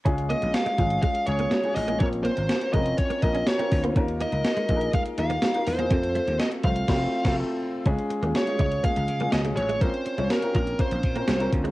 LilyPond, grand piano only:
\new Staff \with { instrumentName = "Grand piano" } { \time 4/4 \key des \major \tempo 4 = 123 <aes des' f' aes'>4~ <aes des' f' aes'>16 r16 <aes des' f' aes'>8. r16 <aes des' f' aes'>8. <aes des' f' aes'>8 <aes des' f' aes'>16 | <c' des' f' bes'>4~ <c' des' f' bes'>16 r16 <c' des' f' bes'>8. r16 <c' des' f' bes'>8. <c' des' f' bes'>8 <c' des' f' c''>16 | <bes ees' f' bes'>4~ <bes ees' f' bes'>16 r16 <bes ees' f' aes' bes'>8. r16 <bes ees' f' bes'>8. <bes ees' f' bes'>8 <bes ees' f' aes'>16 | <a c' f' a'>4~ <a c' f' a'>16 r16 <a c' f' c''>8 <a c' f' c''>8 r16 <a c' f' a'>8 r8. |
<aes des' f' aes'>8. <aes des' f' aes'>8 <aes des' f' aes'>8. <aes des' f' aes'>8. <aes des' f' aes'>8 <aes des' f' aes'>8. | <c' des' f' bes'>8. <c' des' f' des''>8 <c' des' f' bes'>8. <c' des' f' bes'>8. <c' des' f' bes'>8 <c' des' f' bes'>8. | }